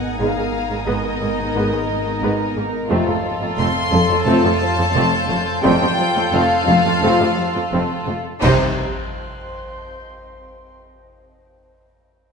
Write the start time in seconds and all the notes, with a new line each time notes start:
Already playing: G#1 B3 D#4 A#4 D#5 F#5 G#5 A#5 D#6
0.19 G#1 G#2 A#2 G#3 B3 D#4 A#4 D#5 F5 A#5
0.37 G#2 G#3
0.54 G#3
0.71 G#2 G#3 B5
0.87 G#1 G#2 G#3 B3 D#5
1.20 G#1 G#2 G#3 A#3
1.39 G#2 G#3
1.54 G#1 G#2 G#3 B3 D#4 A#4
1.72 G#2 G#3
1.89 G#3
2.06 G#2 G#3
2.22 G#1 G#2 G#3 B3
2.55 G#1 G#2 G#3 A#3
2.89 F1 F2 C3 A3 C4 F4 A4 C#5 F5 A5 C6
3.07 F2 F3 A3
3.25 F3
3.41 F2 F3 A3
3.58 F1 F2 A3 C4 C6
3.92 F1 F2 A3 A4 A5
4.10 F2 F3 A3
4.26 F1 F2 C3 A3 C4 F4 A5 G6
4.44 F2 F3 A3
4.61 F3
4.78 F2 F3 A3
4.95 F1 F2 A3 C4
5.29 F1 F2 A3
5.63 F1 F2 C3 A3 C4 F4 A4 D5 F5 G5 A5 C6
5.81 F2 F3 A3
5.99 F3
6.15 F2 F3 A3
6.32 F1 F2 A3 C4 F5
6.68 F1 F2 A3
6.85 F2 F3 A3
7.02 F1 F2 C3 A3 C4 F4
7.11 F#6
7.20 F2 F3 A3
7.37 F3
7.55 F2 F3 A3
7.72 F1 F2 A3 C4
8.07 F1 F2 A3
8.42 C2 C3 G3 C4 D#4 C5 C6 F#6, concert bass drum, crash
9.69 G6